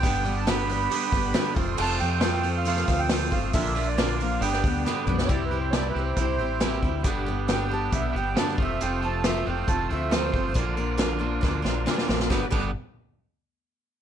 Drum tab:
CC |----------------|x---------------|----------------|----------------|
HH |o-o-o-o-o-o-o-o-|--o-o-o-o-o-o-o-|o-o-o-o-o-o-----|x---x---x---x---|
SD |----o-------o---|----o----oo-o---|----o----oo-o--o|----o-------oo--|
T2 |----------------|----------------|--------------o-|----------------|
BD |o---------o---o-|----------o---o-|o---------o-----|o-------o-----o-|

CC |----------------|----------------|----------------|--x-------------|
HH |x---x---x---x---|x---x---x---x---|x---x-----------|----------------|
SD |----o-------oo--|----o-------o---|----o---o-o-oooo|o---------------|
T2 |----------------|----------------|----------------|----------------|
BD |o-------o-----o-|--------o-----o-|o-------o-------|o-o-------------|